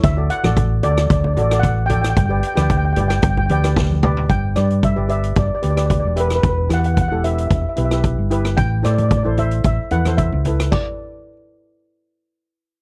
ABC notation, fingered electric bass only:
X:1
M:4/4
L:1/16
Q:1/4=112
K:G
V:1 name="Fingered electric bass" clef=bass
D,,2 z A,,,3 D,,2 D,,2 A,,,6 | G,,,2 z D,,3 G,,,2 G,,,2 D,,6 | G,,,2 G,,3 G,,,3 G,,, z D,,3 E,,,3 | E,,,2 E,,3 E,,,3 E,,, z B,,,3 G,,,3 |
A,,,2 A,,3 A,,,3 A,,, z E,,3 ^C,,3 | z16 |]